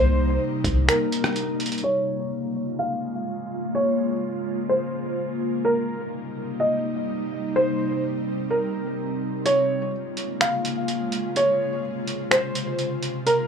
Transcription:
0.00 0.39 C2 loud
0.00 1.80 C3 medium
0.00 1.80 G3 medium
0.00 1.80 A#3 medium
0.00 1.80 D#4 medium
0.00 0.38 C5 loud
0.64 0.88 C2 loud
0.64 kick loud
0.64 closed hi-hat medium
0.88 1.80 A#4 medium
0.88 finger snap loud
0.88 closed hi-hat medium
1.12 closed hi-hat medium
1.24 cross-stick medium
1.36 closed hi-hat medium
1.60 closed hi-hat medium
1.66 closed hi-hat medium
1.72 closed hi-hat medium
1.78 closed hi-hat medium
1.83 5.61 C#3 medium
1.83 5.61 G#3 medium
1.83 7.51 A#3 medium
1.83 5.61 F4 medium
1.83 2.28 C#5 loud
2.79 3.70 F5 medium
3.75 4.19 C#5 loud
4.69 5.61 C5 medium
5.65 9.42 C3 medium
5.65 9.42 G3 medium
5.65 9.42 D#4 medium
5.65 6.09 A#4 medium
6.60 7.51 D#5 medium
7.55 9.44 C4 medium
7.55 8.00 C5 medium
8.51 9.42 A#4 medium
9.45 13.23 C#3 medium
9.45 13.23 G#3 medium
9.45 11.34 A#3 medium
9.45 13.23 F4 medium
9.45 9.90 C#5 loud
9.45 closed hi-hat medium
10.17 closed hi-hat medium
10.41 11.32 F5 medium
10.41 finger snap loud
10.41 closed hi-hat medium
10.65 closed hi-hat medium
10.88 closed hi-hat medium
11.12 closed hi-hat medium
11.36 13.25 C3 medium
11.36 11.81 C#5 loud
11.36 closed hi-hat medium
12.07 closed hi-hat medium
12.31 13.22 C5 medium
12.31 finger snap loud
12.31 closed hi-hat medium
12.55 closed hi-hat medium
12.79 closed hi-hat medium
13.03 closed hi-hat medium
13.26 13.47 C3 medium
13.26 13.47 G3 medium
13.26 13.47 A#3 medium
13.26 13.47 D#4 medium
13.26 13.47 A#4 medium
13.26 closed hi-hat medium

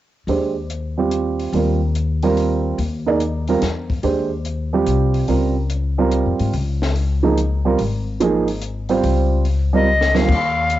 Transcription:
0.27 1.49 D#2 medium
0.27 0.53 G#3 soft
0.27 0.53 D4 soft
0.27 0.53 G4 soft
0.27 0.54 C5 soft
0.27 open hi-hat soft
0.70 closed hi-hat soft
0.98 1.51 G3 soft
0.98 1.51 C4 soft
0.98 1.51 F4 soft
0.98 1.51 G4 soft
1.11 closed hi-hat soft
1.39 open hi-hat soft
1.53 2.74 D#2 medium
1.53 1.79 G3 soft
1.53 1.79 C4 soft
1.53 1.79 F4 soft
1.53 1.79 A#4 soft
1.53 open hi-hat soft
1.95 closed hi-hat soft
2.23 2.76 G3 medium
2.23 2.76 C4 soft
2.23 2.76 F4 soft
2.23 2.76 A#4 medium
2.23 open hi-hat soft
2.37 open hi-hat soft
2.78 3.58 D#2 medium
2.78 open hi-hat soft
3.06 3.19 A#3 medium
3.06 3.19 D#4 soft
3.06 3.19 G#4 medium
3.06 3.20 D5 medium
3.20 closed hi-hat soft
3.48 3.61 G3 soft
3.48 3.61 C4 soft
3.48 3.61 F4 soft
3.48 3.61 A#4 medium
3.48 open hi-hat soft
3.62 4.01 E2 medium
3.62 snare soft
3.62 closed hi-hat soft
3.90 kick soft
3.90 open hi-hat soft
4.03 4.83 D#2 medium
4.03 4.28 G#3 soft
4.03 4.29 D4 soft
4.03 4.29 G4 soft
4.03 4.29 C5 medium
4.03 open hi-hat soft
4.45 closed hi-hat soft
4.73 5.26 G3 soft
4.73 5.26 C4 soft
4.73 5.26 F4 soft
4.73 5.27 G4 medium
4.87 5.26 C2 medium
4.87 closed hi-hat soft
5.14 open hi-hat soft
5.28 6.22 C#2 medium
5.28 5.54 G3 soft
5.28 5.54 C4 soft
5.28 5.54 F4 soft
5.28 5.54 A#4 soft
5.28 open hi-hat soft
5.70 closed hi-hat soft
5.98 6.51 G3 medium
5.98 6.51 C4 soft
5.98 6.52 F4 soft
5.98 6.52 A#4 medium
6.11 closed hi-hat soft
6.26 6.39 F2 soft
6.39 6.53 G#2 medium
6.39 open hi-hat soft
6.53 7.75 C#2 medium
6.53 open hi-hat soft
6.82 snare soft
6.96 open hi-hat soft
7.23 7.36 F3 medium
7.23 7.36 A#3 soft
7.23 7.36 D#4 medium
7.23 7.36 G#4 medium
7.38 closed hi-hat soft
7.65 7.78 G3 medium
7.65 7.78 C4 soft
7.65 7.78 F4 soft
7.65 7.78 A#4 medium
7.78 9.00 G#1 medium
7.78 open hi-hat soft
8.20 8.46 F3 medium
8.20 8.46 A#3 medium
8.20 8.46 D#4 medium
8.20 8.46 G#4 medium
8.20 closed hi-hat soft
8.48 open hi-hat soft
8.62 closed hi-hat soft
8.89 9.43 G3 medium
8.89 9.43 C4 soft
8.89 9.43 F4 soft
8.89 9.43 C5 medium
8.89 open hi-hat soft
9.03 10.25 C#2 medium
9.03 open hi-hat soft
9.45 open hi-hat soft
9.73 9.86 G3 medium
9.73 9.86 C4 medium
9.73 9.86 F4 soft
9.73 9.86 A#4 medium
9.73 10.18 D#5 medium
10.01 snare soft
10.14 10.27 D#2 soft
10.14 10.27 G3 soft
10.14 10.27 C4 soft
10.14 10.28 F4 soft
10.14 10.28 A#4 soft
10.14 10.79 F5 medium
10.14 snare medium
10.28 10.79 D#2 medium
10.28 kick medium
10.28 crash medium
10.70 closed hi-hat soft

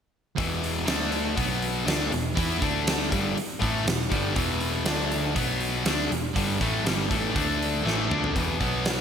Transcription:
0.37 0.85 E1 medium
0.37 0.87 E2 medium
0.37 0.85 B2 medium
0.37 0.86 E3 medium
0.37 kick loud
0.37 open hi-hat medium
0.64 open hi-hat medium
0.86 1.34 D2 medium
0.86 1.36 D3 medium
0.86 1.36 A3 medium
0.86 1.36 D4 medium
0.86 snare loud
0.86 open hi-hat medium
1.12 open hi-hat medium
1.36 1.84 B1 medium
1.36 1.86 B2 medium
1.36 1.86 F#3 medium
1.36 1.86 B3 medium
1.36 kick loud
1.36 open hi-hat medium
1.62 open hi-hat medium
1.86 2.10 D2 medium
1.86 2.11 D3 medium
1.86 2.11 A3 medium
1.86 2.12 D4 medium
1.86 snare loud
1.86 open hi-hat medium
2.11 2.35 E1 medium
2.11 2.32 E2 medium
2.11 2.32 B2 medium
2.11 open hi-hat medium
2.35 2.60 E2 medium
2.35 2.61 E3 medium
2.35 2.61 B3 medium
2.35 2.61 E4 loud
2.35 kick loud
2.35 open hi-hat medium
2.61 3.09 D2 medium
2.61 3.10 D3 medium
2.61 3.11 A3 loud
2.61 3.11 D4 loud
2.61 kick loud
2.61 open hi-hat medium
2.87 snare loud
2.87 open hi-hat medium
3.11 3.35 G1 medium
3.11 3.35 G2 medium
3.11 3.36 D3 medium
3.11 3.36 G3 medium
3.11 kick loud
3.11 open hi-hat medium
3.35 muted distorted electric guitar stroke medium
3.35 muted picked electric bass stroke soft
3.35 open hi-hat medium
3.60 3.85 A1 medium
3.60 3.84 A2 medium
3.60 3.85 E3 medium
3.60 3.86 A3 loud
3.60 kick medium
3.60 open hi-hat medium
3.84 4.09 E1 medium
3.84 4.05 E2 medium
3.84 4.06 B2 medium
3.84 snare loud
3.84 open hi-hat medium
4.09 4.35 G1 loud
4.09 4.34 G2 medium
4.09 4.35 D3 medium
4.09 4.35 G3 loud
4.09 kick loud
4.09 open hi-hat medium
4.34 4.83 E1 loud
4.34 4.84 E2 medium
4.34 4.85 B2 medium
4.34 4.85 E3 loud
4.34 kick loud
4.34 open hi-hat medium
4.61 open hi-hat medium
4.85 5.32 D2 medium
4.85 5.34 D3 medium
4.85 5.35 A3 medium
4.85 5.35 D4 medium
4.85 snare loud
4.85 open hi-hat medium
5.12 open hi-hat medium
5.34 5.82 B1 medium
5.34 5.84 B2 medium
5.34 5.84 F#3 medium
5.34 5.85 B3 medium
5.34 kick loud
5.34 open hi-hat medium
5.61 open hi-hat medium
5.85 6.09 D2 medium
5.85 6.10 D3 medium
5.85 6.10 A3 medium
5.85 6.10 D4 loud
5.85 snare loud
5.85 open hi-hat medium
6.10 6.33 E1 medium
6.10 6.31 E2 medium
6.10 6.31 B2 medium
6.10 open hi-hat medium
6.36 6.59 G1 medium
6.36 6.60 G2 medium
6.36 6.60 D3 medium
6.36 6.60 G3 loud
6.36 kick loud
6.36 open hi-hat medium
6.61 6.84 A1 medium
6.61 6.85 A2 medium
6.61 6.85 E3 medium
6.61 6.85 A3 medium
6.61 kick loud
6.61 open hi-hat medium
6.86 7.09 G1 medium
6.86 7.10 G2 medium
6.86 7.10 D3 medium
6.86 7.10 G3 medium
6.86 snare loud
6.86 open hi-hat medium
7.10 7.34 A1 medium
7.10 7.34 A2 medium
7.10 7.35 E3 medium
7.10 7.35 A3 medium
7.10 kick loud
7.10 open hi-hat medium
7.36 7.82 D2 medium
7.36 7.84 D3 medium
7.36 7.85 A3 medium
7.36 7.85 D4 medium
7.36 kick loud
7.36 open hi-hat medium
7.62 open hi-hat medium
7.84 8.08 A1 medium
7.84 8.09 A2 medium
7.84 8.09 E3 medium
7.84 8.08 A3 medium
7.84 snare medium
8.09 8.33 D2 medium
8.09 8.34 D3 medium
8.09 8.34 A3 medium
8.09 8.34 D4 medium
8.09 mid tom medium
8.24 floor tom medium
8.35 8.59 E1 medium
8.35 8.59 E2 medium
8.35 8.59 B2 medium
8.35 8.59 E3 loud
8.35 kick medium
8.35 open hi-hat medium
8.60 9.01 B1 medium
8.60 9.01 B2 medium
8.60 9.01 F#3 medium
8.60 9.01 B3 medium
8.60 kick medium
8.60 open hi-hat medium
8.86 snare loud
8.86 open hi-hat medium

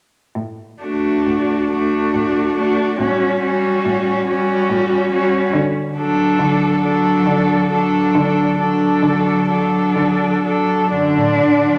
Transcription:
0.35 1.14 A2 soft
0.82 1.70 A3 soft
0.82 1.70 D4 soft
0.82 1.70 F#4 soft
1.27 2.02 A2 soft
1.70 2.56 A3 soft
1.70 2.57 D4 soft
1.70 2.55 F#4 soft
2.14 2.87 A2 soft
2.57 2.99 A3 soft
2.57 2.99 D4 soft
2.57 2.98 F#4 soft
2.99 3.73 A2 soft
2.99 3.42 G3 soft
2.99 3.42 C#4 soft
2.99 3.41 F#4 soft
3.41 4.27 G3 soft
3.41 4.27 C#4 soft
3.41 4.26 F#4 soft
3.85 4.57 A2 soft
4.28 5.10 G3 soft
4.28 5.10 C#4 soft
4.28 5.10 F#4 soft
4.70 5.41 A2 medium
5.12 5.53 G3 soft
5.12 5.53 C#4 soft
5.12 5.54 F#4 soft
5.53 6.28 D3 medium
5.98 6.82 F#3 soft
5.98 6.82 D4 soft
5.98 6.82 A4 soft
6.40 7.14 D3 medium
6.83 7.69 F#3 soft
6.83 7.69 D4 soft
6.83 7.70 A4 soft
7.26 8.02 D3 soft
7.71 8.58 F#3 soft
7.71 8.58 D4 soft
7.71 8.59 A4 soft
8.15 8.91 D3 soft
8.59 9.48 F#3 soft
8.59 9.47 D4 soft
8.59 9.48 A4 soft
9.03 9.82 D3 soft
9.49 10.43 F#3 soft
9.49 10.43 D4 soft
9.49 10.43 A4 soft
9.96 10.79 D3 soft
10.45 10.92 F#3 soft
10.45 10.91 D4 soft
10.45 10.92 A4 soft
10.91 11.18 F#2 soft
10.91 11.72 D3 soft
10.91 11.79 D4 soft
10.91 11.79 D4 medium
11.16 11.42 A2 soft
11.40 11.66 D3 soft
11.65 11.79 F#3 soft

